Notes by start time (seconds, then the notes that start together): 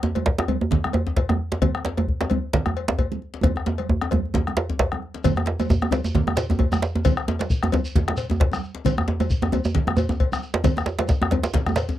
0.03 djembe slap, djembe tone
0.15 cowbell, djembe slap, djembe tone, high conga
0.26 bombo low, djembe slap, high conga
0.38 bombo rim, djembe slap, djembe tone
0.48 cowbell, high conga, djembe bass
0.61 djembe tone
0.71 bombo low, djembe slap, djembe tone, low conga
0.84 bombo rim, djembe tone, high conga
0.93 cowbell, djembe tone, high conga
1.07 bombo rim, djembe slap, high conga, djembe bass
1.16 bombo low, cowbell, djembe slap
1.29 bombo rim, djembe slap, djembe tone, high conga
1.52 djembe slap
1.62 bombo low, cowbell, djembe tone, high conga, djembe bass, low conga
1.75 bombo rim, djembe tone
1.85 djembe slap
1.97 cowbell, djembe tone, high conga
2.08 bombo low, high conga
2.21 bombo rim, djembe slap, high conga, djembe tone
2.30 cowbell, high conga, djembe bass
2.53 bombo low, djembe slap, low conga
2.66 bombo rim, djembe tone, high conga
2.77 cowbell, high conga
2.88 bombo rim, djembe slap, high conga, djembe bass
2.98 bombo low, cowbell, djembe tone
3.12 djembe slap, high conga, djembe tone
3.22 djembe slap
3.34 djembe slap
3.43 bombo rim, bombo low, cowbell, djembe tone, high conga, djembe bass, low conga
3.56 bombo rim, djembe slap, djembe tone
3.66 djembe slap, djembe tone
3.78 bombo rim, cowbell, high conga
3.89 bombo low, djembe slap, djembe tone
4.01 bombo rim, djembe slap, djembe tone, high conga
4.11 cowbell, djembe slap, djembe tone, high conga, djembe bass
4.25 djembe slap
4.34 bombo rim, bombo low, djembe slap, djembe tone, high conga, low conga
4.47 bombo rim, djembe slap, high conga, djembe tone
4.57 cowbell, djembe slap
4.70 djembe slap, high conga, djembe bass
4.79 bombo low, cowbell, djembe slap, high conga
4.92 bombo rim, djembe tone, high conga
5.02 djembe slap
5.14 djembe slap, high conga
5.24 bombo low, cowbell, djembe tone, high conga, djembe bass, low conga, shekere
5.36 bombo rim, djembe tone
5.46 djembe slap
5.59 cowbell, djembe slap, djembe tone, high conga, shekere
5.70 bombo low, djembe tone, high conga, shekere
5.82 bombo rim, djembe tone, high conga
5.91 cowbell, djembe slap, high conga, djembe bass, shekere
6.04 djembe tone, shekere
6.15 bombo low, djembe slap, djembe tone, low conga
6.27 bombo rim, djembe tone, high conga
6.37 cowbell, djembe slap, shekere
6.50 bombo rim, djembe slap, djembe tone, high conga, djembe bass, shekere
6.59 bombo low, cowbell, djembe tone
6.72 bombo rim, djembe tone, high conga, shekere
6.82 djembe slap, shekere
6.95 djembe slap, djembe tone
7.05 bombo low, cowbell, high conga, djembe bass, low conga, shekere
7.17 bombo rim, djembe tone
7.28 djembe slap, djembe tone
7.39 cowbell, djembe slap, high conga, shekere
7.50 bombo low, high conga, shekere
7.63 bombo rim, djembe slap, djembe tone, high conga
7.72 cowbell, djembe slap, high conga, djembe bass, shekere
7.85 shekere
7.95 bombo low, djembe slap, djembe tone, low conga
8.08 bombo rim, djembe slap, djembe tone, high conga
8.17 cowbell, high conga, shekere
8.30 bombo rim, djembe slap, djembe tone, high conga, djembe bass, shekere
8.40 bombo low, cowbell, djembe slap
8.52 bombo rim, djembe slap, djembe tone, high conga, shekere
8.62 djembe slap, shekere
8.75 djembe slap
8.85 bombo low, cowbell, high conga, djembe bass, low conga, shekere
8.98 bombo rim, djembe tone
9.08 djembe slap, djembe tone
9.20 cowbell, djembe slap, djembe tone, high conga, shekere
9.30 bombo low, high conga, shekere
9.42 bombo rim, djembe slap, djembe tone, high conga
9.52 cowbell, djembe tone, high conga, djembe bass, shekere
9.65 djembe tone, shekere
9.75 bombo low, djembe slap, low conga
9.87 bombo rim, djembe tone, high conga
9.97 cowbell, djembe tone, shekere
10.09 bombo rim, djembe slap, djembe tone, high conga, djembe bass, shekere
10.20 bombo low, cowbell
10.32 bombo rim, djembe slap, high conga, djembe tone, shekere
10.42 djembe slap, shekere
10.54 djembe slap
10.64 bombo low, cowbell, djembe slap, high conga, djembe bass, low conga, shekere
10.76 bombo rim, djembe tone, shekere
10.86 djembe slap, shekere
10.99 cowbell, djembe slap, high conga
11.08 bombo rim, bombo low, djembe slap, shekere
11.22 bombo rim, djembe slap, djembe tone
11.31 cowbell, djembe slap, high conga, djembe bass
11.43 djembe slap, shekere
11.54 bombo low, djembe slap, high conga, low conga, shekere
11.66 bombo rim, djembe tone, high conga, shekere
11.76 bombo rim, cowbell, djembe slap, shekere
11.89 djembe slap, djembe bass, shekere